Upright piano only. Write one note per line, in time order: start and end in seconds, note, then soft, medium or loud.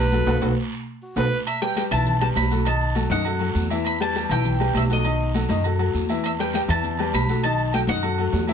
0.12 0.24 F#3 medium
0.12 0.25 F#4 medium
0.12 0.25 A4 medium
0.27 0.37 F#4 loud
0.27 0.37 A4 loud
0.27 0.37 B4 loud
0.42 0.51 F#4 loud
0.42 0.52 A4 medium
0.42 0.51 B4 loud
1.17 1.26 F#4 medium
1.17 1.26 A4 medium
1.17 1.26 B4 loud
1.62 1.74 G3 medium
1.62 1.74 G4 medium
1.62 1.74 B4 medium
1.77 1.89 G3 medium
1.77 1.89 G4 medium
1.77 1.89 B4 medium
1.92 2.16 E3 medium
1.92 2.16 E4 medium
1.92 2.16 E5 medium
2.21 2.46 G3 medium
2.21 2.46 G4 medium
2.21 2.46 B4 medium
2.51 2.63 F#3 medium
2.51 2.63 F#4 medium
2.51 2.64 A4 medium
2.66 2.90 D#3 medium
2.66 2.91 D#4 medium
2.66 2.91 D#5 medium
2.95 3.08 F#3 medium
2.95 3.08 F#4 medium
2.95 3.08 A4 medium
3.11 3.23 D#3 loud
3.11 3.23 D#4 medium
3.11 3.23 D#5 medium
3.25 3.38 F#3 medium
3.25 3.38 F#4 medium
3.25 3.38 A4 medium
3.40 3.65 F#3 medium
3.40 3.65 F#4 medium
3.40 3.65 A4 medium
3.70 3.95 E3 medium
3.70 3.95 E4 loud
3.70 3.95 E5 loud
4.00 4.13 G3 medium
4.00 4.13 G4 medium
4.00 4.13 B4 medium
4.16 4.28 G3 medium
4.16 4.28 G4 medium
4.16 4.28 B4 medium
4.31 4.55 E3 loud
4.31 4.55 E4 medium
4.31 4.55 E5 medium
4.60 4.85 G3 medium
4.60 4.85 G4 medium
4.60 4.85 B4 medium
4.90 5.02 F#3 medium
4.90 5.02 F#4 medium
4.90 5.03 A4 medium
5.05 5.29 D#3 medium
5.05 5.30 D#4 medium
5.05 5.30 D#5 medium
5.35 5.47 F#3 medium
5.35 5.47 F#4 medium
5.35 5.47 A4 medium
5.50 5.62 D#3 medium
5.50 5.62 D#4 medium
5.50 5.62 D#5 medium
5.65 5.77 F#3 medium
5.65 5.77 F#4 medium
5.65 5.77 A4 medium
5.79 6.03 F#3 medium
5.79 6.04 F#4 medium
5.79 6.04 A4 medium
6.09 6.34 E3 medium
6.09 6.34 E4 medium
6.09 6.34 E5 medium
6.39 6.51 G3 medium
6.39 6.52 G4 medium
6.39 6.52 B4 medium
6.54 6.66 G3 medium
6.54 6.67 G4 medium
6.54 6.67 B4 medium
6.69 6.93 E3 medium
6.69 6.94 E4 medium
6.69 6.94 E5 medium
6.99 7.24 G3 medium
6.99 7.24 G4 medium
6.99 7.24 B4 medium
7.29 7.41 F#3 medium
7.29 7.41 F#4 medium
7.29 7.41 A4 medium
7.44 7.68 D#3 medium
7.44 7.68 D#4 medium
7.44 7.69 D#5 medium
7.73 7.86 F#3 medium
7.73 7.86 F#4 medium
7.73 7.86 A4 medium
7.88 8.00 D#3 medium
7.88 8.01 D#4 medium
7.88 8.01 D#5 medium
8.03 8.15 F#3 medium
8.03 8.16 F#4 medium
8.03 8.16 A4 medium
8.18 8.43 F#3 medium
8.18 8.43 F#4 medium
8.18 8.43 A4 medium
8.48 8.53 E3 loud
8.48 8.53 E4 medium
8.48 8.53 E5 loud